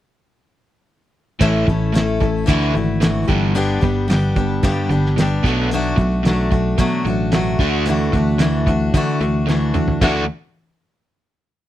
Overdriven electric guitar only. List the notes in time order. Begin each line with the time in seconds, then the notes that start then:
1.39 A2 E3 A3
1.66 A2 E3
1.93 A2 E3
2.21 A2 E3
2.48 D3 A3 D4
2.74 D3 A3
3.01 D3 A3
3.29 G2 D3 G3
3.55 G2 D3
3.84 G2 D3
4.10 G2 D3
4.37 G2 D3
4.64 G2 D3
4.90 G2 D3
5.17 G2 D3
5.43 B2 F#3 B3
5.69 B2 F#3
5.96 B2 F#3
6.23 B2 F#3
6.51 B2 F#3
6.78 B2 F#3
7.05 B2 F#3
7.32 B2 F#3
7.60 D3 A3 D4
7.86 D3 A3
8.12 D3 A3
8.38 D3 A3
8.66 D3 A3
8.94 D3 A3
9.21 D3 A3
9.47 D3 A3
9.74 D3 A3
10.01 D3 A3 D4 F#4